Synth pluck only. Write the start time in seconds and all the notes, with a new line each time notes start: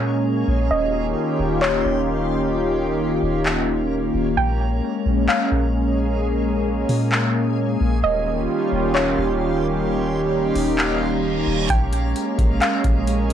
0.71 D#5
1.61 C#5
4.37 G5
5.28 F5
8.04 D#5
8.94 C#5
11.70 G5
12.61 F5